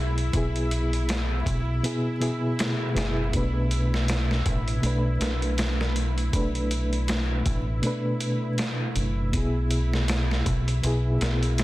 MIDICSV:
0, 0, Header, 1, 5, 480
1, 0, Start_track
1, 0, Tempo, 750000
1, 216, Time_signature, 4, 2, 24, 8
1, 7448, End_track
2, 0, Start_track
2, 0, Title_t, "Synth drone"
2, 0, Program_c, 0, 95
2, 0, Note_on_c, 0, 64, 87
2, 7448, Note_off_c, 0, 64, 0
2, 7448, End_track
3, 0, Start_track
3, 0, Title_t, "Reed electric piano"
3, 0, Program_c, 1, 4
3, 0, Control_c, 1, 64, 127
3, 0, Note_on_c, 1, 47, 75
3, 0, Note_on_c, 1, 59, 69
3, 0, Note_on_c, 1, 64, 69
3, 0, Note_on_c, 1, 68, 86
3, 185, Note_off_c, 1, 47, 0
3, 191, Note_off_c, 1, 59, 0
3, 197, Note_off_c, 1, 64, 0
3, 201, Note_off_c, 1, 68, 0
3, 205, Note_on_c, 1, 47, 71
3, 216, Note_on_c, 1, 59, 61
3, 226, Note_on_c, 1, 64, 60
3, 236, Note_on_c, 1, 68, 76
3, 1146, Note_off_c, 1, 47, 0
3, 1152, Note_off_c, 1, 59, 0
3, 1157, Note_off_c, 1, 64, 0
3, 1161, Note_off_c, 1, 68, 0
3, 1171, Note_on_c, 1, 47, 78
3, 1177, Note_on_c, 1, 59, 73
3, 1184, Note_on_c, 1, 64, 70
3, 1188, Note_on_c, 1, 68, 83
3, 1393, Note_off_c, 1, 47, 0
3, 1396, Note_off_c, 1, 59, 0
3, 1400, Note_off_c, 1, 64, 0
3, 1402, Note_off_c, 1, 68, 0
3, 1409, Note_on_c, 1, 47, 77
3, 1415, Note_on_c, 1, 59, 70
3, 1420, Note_on_c, 1, 64, 71
3, 1424, Note_on_c, 1, 68, 84
3, 1868, Note_off_c, 1, 47, 0
3, 1871, Note_off_c, 1, 59, 0
3, 1873, Note_off_c, 1, 64, 0
3, 1876, Note_off_c, 1, 68, 0
3, 1886, Note_on_c, 1, 47, 82
3, 1891, Note_on_c, 1, 59, 71
3, 1899, Note_on_c, 1, 64, 75
3, 1901, Note_on_c, 1, 68, 86
3, 2106, Note_off_c, 1, 47, 0
3, 2109, Note_off_c, 1, 59, 0
3, 2113, Note_off_c, 1, 64, 0
3, 2114, Note_off_c, 1, 68, 0
3, 2118, Note_on_c, 1, 47, 67
3, 2131, Note_on_c, 1, 57, 56
3, 2142, Note_on_c, 1, 62, 59
3, 2144, Control_c, 1, 64, 0
3, 2153, Note_on_c, 1, 71, 70
3, 2252, Control_c, 1, 64, 127
3, 3063, Note_off_c, 1, 47, 0
3, 3069, Note_off_c, 1, 57, 0
3, 3075, Note_off_c, 1, 62, 0
3, 3080, Note_off_c, 1, 71, 0
3, 3082, Note_on_c, 1, 47, 74
3, 3092, Note_on_c, 1, 57, 67
3, 3103, Note_on_c, 1, 62, 70
3, 3114, Note_on_c, 1, 71, 88
3, 4024, Note_off_c, 1, 47, 0
3, 4030, Note_off_c, 1, 57, 0
3, 4035, Note_off_c, 1, 62, 0
3, 4040, Note_off_c, 1, 71, 0
3, 4042, Note_on_c, 1, 47, 63
3, 4052, Note_on_c, 1, 57, 61
3, 4063, Note_on_c, 1, 62, 62
3, 4073, Note_on_c, 1, 71, 71
3, 4985, Note_off_c, 1, 47, 0
3, 4990, Note_off_c, 1, 57, 0
3, 4995, Note_off_c, 1, 62, 0
3, 5000, Note_off_c, 1, 71, 0
3, 5002, Note_on_c, 1, 47, 81
3, 5013, Note_on_c, 1, 57, 69
3, 5024, Note_on_c, 1, 62, 69
3, 5035, Note_on_c, 1, 71, 86
3, 5945, Note_off_c, 1, 47, 0
3, 5950, Note_off_c, 1, 57, 0
3, 5956, Note_off_c, 1, 62, 0
3, 5961, Note_off_c, 1, 71, 0
3, 5965, Note_on_c, 1, 47, 67
3, 5975, Note_on_c, 1, 59, 61
3, 5984, Control_c, 1, 64, 0
3, 5986, Note_on_c, 1, 64, 65
3, 5998, Note_on_c, 1, 68, 72
3, 6094, Control_c, 1, 64, 127
3, 6906, Note_off_c, 1, 47, 0
3, 6911, Note_off_c, 1, 59, 0
3, 6917, Note_off_c, 1, 64, 0
3, 6922, Note_on_c, 1, 47, 74
3, 6923, Note_off_c, 1, 68, 0
3, 6930, Note_on_c, 1, 59, 71
3, 6942, Note_on_c, 1, 64, 71
3, 6954, Note_on_c, 1, 68, 90
3, 7448, Note_off_c, 1, 47, 0
3, 7448, Note_off_c, 1, 59, 0
3, 7448, Note_off_c, 1, 64, 0
3, 7448, Note_off_c, 1, 68, 0
3, 7448, End_track
4, 0, Start_track
4, 0, Title_t, "Fingered electric bass"
4, 0, Program_c, 2, 33
4, 0, Note_on_c, 2, 35, 95
4, 197, Note_off_c, 2, 35, 0
4, 215, Note_on_c, 2, 35, 89
4, 916, Note_off_c, 2, 35, 0
4, 934, Note_on_c, 2, 35, 93
4, 1151, Note_off_c, 2, 35, 0
4, 1892, Note_on_c, 2, 30, 84
4, 2110, Note_off_c, 2, 30, 0
4, 2134, Note_on_c, 2, 35, 86
4, 2836, Note_off_c, 2, 35, 0
4, 2853, Note_on_c, 2, 33, 94
4, 3070, Note_off_c, 2, 33, 0
4, 3093, Note_on_c, 2, 35, 89
4, 3310, Note_off_c, 2, 35, 0
4, 3334, Note_on_c, 2, 35, 88
4, 4035, Note_off_c, 2, 35, 0
4, 4054, Note_on_c, 2, 35, 90
4, 4755, Note_off_c, 2, 35, 0
4, 4775, Note_on_c, 2, 33, 97
4, 4991, Note_off_c, 2, 33, 0
4, 5733, Note_on_c, 2, 30, 92
4, 5950, Note_off_c, 2, 30, 0
4, 5973, Note_on_c, 2, 35, 89
4, 6675, Note_off_c, 2, 35, 0
4, 6694, Note_on_c, 2, 35, 94
4, 6911, Note_off_c, 2, 35, 0
4, 6937, Note_on_c, 2, 35, 94
4, 7152, Note_off_c, 2, 35, 0
4, 7177, Note_on_c, 2, 35, 95
4, 7448, Note_off_c, 2, 35, 0
4, 7448, End_track
5, 0, Start_track
5, 0, Title_t, "Drums"
5, 114, Note_on_c, 9, 42, 42
5, 178, Note_off_c, 9, 42, 0
5, 214, Note_on_c, 9, 36, 101
5, 214, Note_on_c, 9, 42, 78
5, 278, Note_off_c, 9, 36, 0
5, 278, Note_off_c, 9, 42, 0
5, 357, Note_on_c, 9, 42, 39
5, 421, Note_off_c, 9, 42, 0
5, 457, Note_on_c, 9, 42, 61
5, 521, Note_off_c, 9, 42, 0
5, 597, Note_on_c, 9, 42, 42
5, 661, Note_off_c, 9, 42, 0
5, 696, Note_on_c, 9, 42, 82
5, 704, Note_on_c, 9, 38, 109
5, 760, Note_off_c, 9, 42, 0
5, 768, Note_off_c, 9, 38, 0
5, 935, Note_on_c, 9, 36, 89
5, 938, Note_on_c, 9, 42, 65
5, 999, Note_off_c, 9, 36, 0
5, 1002, Note_off_c, 9, 42, 0
5, 1179, Note_on_c, 9, 42, 86
5, 1243, Note_off_c, 9, 42, 0
5, 1418, Note_on_c, 9, 42, 63
5, 1482, Note_off_c, 9, 42, 0
5, 1658, Note_on_c, 9, 42, 84
5, 1666, Note_on_c, 9, 38, 113
5, 1722, Note_off_c, 9, 42, 0
5, 1730, Note_off_c, 9, 38, 0
5, 1898, Note_on_c, 9, 42, 68
5, 1905, Note_on_c, 9, 38, 95
5, 1962, Note_off_c, 9, 42, 0
5, 1969, Note_off_c, 9, 38, 0
5, 2133, Note_on_c, 9, 42, 83
5, 2134, Note_on_c, 9, 36, 106
5, 2197, Note_off_c, 9, 42, 0
5, 2198, Note_off_c, 9, 36, 0
5, 2374, Note_on_c, 9, 42, 60
5, 2438, Note_off_c, 9, 42, 0
5, 2522, Note_on_c, 9, 38, 51
5, 2586, Note_off_c, 9, 38, 0
5, 2614, Note_on_c, 9, 42, 86
5, 2621, Note_on_c, 9, 38, 113
5, 2678, Note_off_c, 9, 42, 0
5, 2685, Note_off_c, 9, 38, 0
5, 2759, Note_on_c, 9, 38, 45
5, 2823, Note_off_c, 9, 38, 0
5, 2853, Note_on_c, 9, 36, 92
5, 2853, Note_on_c, 9, 42, 66
5, 2917, Note_off_c, 9, 36, 0
5, 2917, Note_off_c, 9, 42, 0
5, 2993, Note_on_c, 9, 42, 40
5, 3057, Note_off_c, 9, 42, 0
5, 3093, Note_on_c, 9, 42, 78
5, 3157, Note_off_c, 9, 42, 0
5, 3333, Note_on_c, 9, 42, 67
5, 3341, Note_on_c, 9, 38, 48
5, 3397, Note_off_c, 9, 42, 0
5, 3405, Note_off_c, 9, 38, 0
5, 3470, Note_on_c, 9, 42, 42
5, 3534, Note_off_c, 9, 42, 0
5, 3570, Note_on_c, 9, 42, 84
5, 3578, Note_on_c, 9, 38, 116
5, 3634, Note_off_c, 9, 42, 0
5, 3642, Note_off_c, 9, 38, 0
5, 3718, Note_on_c, 9, 38, 44
5, 3782, Note_off_c, 9, 38, 0
5, 3814, Note_on_c, 9, 42, 65
5, 3878, Note_off_c, 9, 42, 0
5, 3953, Note_on_c, 9, 42, 42
5, 4017, Note_off_c, 9, 42, 0
5, 4053, Note_on_c, 9, 36, 105
5, 4053, Note_on_c, 9, 42, 82
5, 4117, Note_off_c, 9, 36, 0
5, 4117, Note_off_c, 9, 42, 0
5, 4193, Note_on_c, 9, 42, 40
5, 4257, Note_off_c, 9, 42, 0
5, 4294, Note_on_c, 9, 42, 63
5, 4358, Note_off_c, 9, 42, 0
5, 4433, Note_on_c, 9, 42, 41
5, 4497, Note_off_c, 9, 42, 0
5, 4532, Note_on_c, 9, 42, 80
5, 4539, Note_on_c, 9, 38, 118
5, 4596, Note_off_c, 9, 42, 0
5, 4603, Note_off_c, 9, 38, 0
5, 4772, Note_on_c, 9, 42, 62
5, 4773, Note_on_c, 9, 36, 92
5, 4836, Note_off_c, 9, 42, 0
5, 4837, Note_off_c, 9, 36, 0
5, 5011, Note_on_c, 9, 42, 80
5, 5075, Note_off_c, 9, 42, 0
5, 5251, Note_on_c, 9, 42, 61
5, 5315, Note_off_c, 9, 42, 0
5, 5491, Note_on_c, 9, 42, 84
5, 5498, Note_on_c, 9, 38, 107
5, 5555, Note_off_c, 9, 42, 0
5, 5562, Note_off_c, 9, 38, 0
5, 5731, Note_on_c, 9, 42, 64
5, 5795, Note_off_c, 9, 42, 0
5, 5973, Note_on_c, 9, 42, 85
5, 5974, Note_on_c, 9, 36, 97
5, 6037, Note_off_c, 9, 42, 0
5, 6038, Note_off_c, 9, 36, 0
5, 6212, Note_on_c, 9, 42, 64
5, 6276, Note_off_c, 9, 42, 0
5, 6359, Note_on_c, 9, 38, 52
5, 6423, Note_off_c, 9, 38, 0
5, 6453, Note_on_c, 9, 42, 84
5, 6461, Note_on_c, 9, 38, 111
5, 6517, Note_off_c, 9, 42, 0
5, 6525, Note_off_c, 9, 38, 0
5, 6601, Note_on_c, 9, 38, 46
5, 6665, Note_off_c, 9, 38, 0
5, 6694, Note_on_c, 9, 36, 90
5, 6695, Note_on_c, 9, 42, 66
5, 6758, Note_off_c, 9, 36, 0
5, 6759, Note_off_c, 9, 42, 0
5, 6834, Note_on_c, 9, 42, 40
5, 6898, Note_off_c, 9, 42, 0
5, 6934, Note_on_c, 9, 42, 85
5, 6998, Note_off_c, 9, 42, 0
5, 7175, Note_on_c, 9, 42, 66
5, 7183, Note_on_c, 9, 38, 52
5, 7239, Note_off_c, 9, 42, 0
5, 7247, Note_off_c, 9, 38, 0
5, 7313, Note_on_c, 9, 42, 43
5, 7377, Note_off_c, 9, 42, 0
5, 7413, Note_on_c, 9, 42, 86
5, 7420, Note_on_c, 9, 38, 112
5, 7448, Note_off_c, 9, 38, 0
5, 7448, Note_off_c, 9, 42, 0
5, 7448, End_track
0, 0, End_of_file